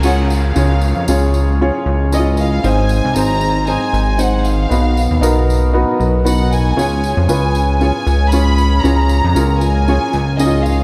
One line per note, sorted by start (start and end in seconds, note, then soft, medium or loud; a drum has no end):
0.00 0.53 C#2 medium
0.00 0.56 C#3 medium
0.00 0.04 C#4 medium
0.00 0.50 C#4 medium
0.00 0.04 F4 medium
0.00 0.04 G#4 medium
0.00 2.65 A#4 medium
0.00 0.05 C#5 medium
0.00 tambourine medium
0.00 downlifter medium
0.04 0.51 F4 medium
0.04 0.51 G#4 medium
0.04 0.51 C#5 medium
0.04 0.31 F#5 medium
0.30 1.30 F5 medium
0.30 tambourine medium
0.55 0.94 C#2 loud
0.55 1.30 C#3 medium
0.55 1.02 C#4 medium
0.55 1.02 F4 medium
0.55 1.03 G#4 medium
0.55 1.03 C#5 medium
0.55 tambourine medium
0.81 tambourine soft
0.97 1.07 F2 medium
1.08 1.71 C#2 loud
1.08 1.54 C#4 medium
1.08 1.55 F4 medium
1.08 1.55 G#4 medium
1.08 1.55 C#5 medium
1.08 tambourine medium
1.34 tambourine soft
1.61 2.07 C#4 medium
1.61 2.07 F4 medium
1.61 2.07 G#4 medium
1.61 2.07 C#5 loud
1.86 2.60 C#2 loud
2.12 2.58 C#4 medium
2.12 2.19 E4 medium
2.12 2.59 G#4 medium
2.12 2.59 D#5 medium
2.12 2.26 D#5 medium
2.12 tambourine medium
2.19 2.62 F4 medium
2.37 2.63 F5 medium
2.37 tambourine soft
2.64 3.01 G#1 loud
2.64 3.37 G#2 medium
2.64 3.10 C4 medium
2.64 3.10 D#4 medium
2.64 3.10 G#4 medium
2.64 3.10 C5 medium
2.64 3.17 G#5 loud
2.64 tambourine medium
2.89 tambourine medium
3.05 3.15 C2 medium
3.16 3.78 G#1 medium
3.16 3.62 C4 medium
3.16 3.62 D#4 medium
3.16 3.62 G#4 medium
3.16 3.62 C5 medium
3.16 3.68 A#5 loud
3.16 tambourine medium
3.41 tambourine soft
3.67 4.13 C4 medium
3.67 4.13 D#4 medium
3.67 4.14 G#4 medium
3.67 4.14 C5 medium
3.67 4.19 G#5 loud
3.67 tambourine soft
3.93 4.67 G#1 medium
3.93 tambourine soft
4.18 4.65 C4 medium
4.18 4.65 D#4 medium
4.18 4.65 G#4 medium
4.18 4.65 C5 medium
4.18 4.45 F#5 loud
4.18 tambourine medium
4.45 5.49 F5 loud
4.45 tambourine soft
4.69 5.08 B1 medium
4.69 5.44 B2 medium
4.69 5.16 B3 medium
4.69 5.16 D#4 medium
4.69 5.16 F#4 medium
4.69 5.17 B4 medium
4.69 tambourine medium
4.97 tambourine soft
5.11 5.21 D#2 medium
5.21 5.85 B1 medium
5.21 5.68 B3 medium
5.21 5.68 D#4 medium
5.21 5.68 F#4 medium
5.21 5.68 A#4 medium
5.21 tambourine medium
5.50 tambourine soft
5.73 6.20 B3 medium
5.73 6.20 D#4 medium
5.73 6.20 F#4 medium
5.73 6.20 B4 medium
6.00 6.73 B1 medium
6.00 tambourine soft
6.25 6.71 B3 medium
6.25 6.71 D#4 medium
6.25 6.72 F#4 medium
6.25 6.72 B4 medium
6.25 6.50 F#5 medium
6.25 tambourine medium
6.52 7.26 G#5 loud
6.52 tambourine soft
6.77 7.15 C#2 loud
6.77 7.51 C#3 medium
6.77 7.23 C#4 medium
6.77 7.23 F4 medium
6.77 7.23 G#4 medium
6.77 7.23 C#5 medium
6.77 tambourine medium
7.04 tambourine medium
7.17 7.28 F2 medium
7.27 7.92 C#2 medium
7.27 7.75 C#4 medium
7.27 7.75 F4 medium
7.27 7.75 G#4 medium
7.27 7.75 B4 medium
7.27 7.76 G#5 medium
7.27 tambourine medium
7.55 tambourine soft
7.78 8.27 C#4 medium
7.78 8.27 F4 medium
7.78 8.27 G#4 medium
7.78 8.28 C#5 medium
7.78 8.28 G#5 loud
7.78 tambourine soft
8.07 8.80 C#2 medium
8.07 tambourine soft
8.31 8.79 C#4 medium
8.31 8.79 F4 medium
8.31 8.79 G#4 medium
8.31 8.79 C#5 medium
8.31 8.83 B5 loud
8.31 tambourine medium
8.58 tambourine soft
8.81 9.22 C#2 medium
8.81 9.58 C#3 medium
8.81 9.30 C#4 medium
8.81 9.30 F4 medium
8.81 9.31 G#4 medium
8.81 9.31 C#5 medium
8.81 9.60 A#5 loud
8.81 tambourine medium
9.09 tambourine medium
9.24 9.35 F2 medium
9.35 9.99 C#2 loud
9.35 9.82 C#4 medium
9.35 9.82 F4 medium
9.35 9.82 G#4 medium
9.35 9.83 A#4 medium
9.35 tambourine medium
9.60 10.34 G#5 loud
9.60 tambourine soft
9.88 10.34 C#4 medium
9.88 10.34 F4 medium
9.88 10.34 G#4 medium
9.88 10.34 C#5 medium
9.88 tambourine soft
10.13 10.84 C#2 loud
10.13 tambourine soft
10.37 10.84 C#4 medium
10.37 10.47 D#4 medium
10.37 10.84 G#4 medium
10.37 10.64 D#5 medium
10.37 10.84 D#5 medium
10.37 tambourine medium
10.46 10.84 F4 medium
10.63 10.84 F5 medium
10.63 tambourine soft